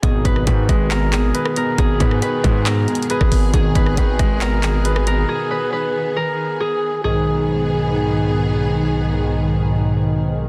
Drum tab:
HH |x-----x-----x-----x-----x-----x-----x-----x-----|x-----x-----x-----x-----x-----x-x-x-x-----o-----|x-----x-----x-----x-----x-----x-----x-----x-----|------------------------------------------------|
CP |------------------------x-----x-----------------|------------------------x-----------------------|------------------------x-----x-----------------|------------------------------------------------|
SD |---------r-----------------------------r--------|---------r-----------------------------r--------|---------r-----------------------------r--------|------------------------------------------------|
BD |o-----o-----o-----o-----------------------------|o-----o-----------o--------------------o--o-----|o-----o-----o-----o-----------------------------|------------------------------------------------|

HH |------------------------------------------------|------------------------------------------------|
CP |------------------------------------------------|------------------------------------------------|
SD |------------------------------------------------|------------------------------------------------|
BD |------------------------------------------------|------------------------------------------------|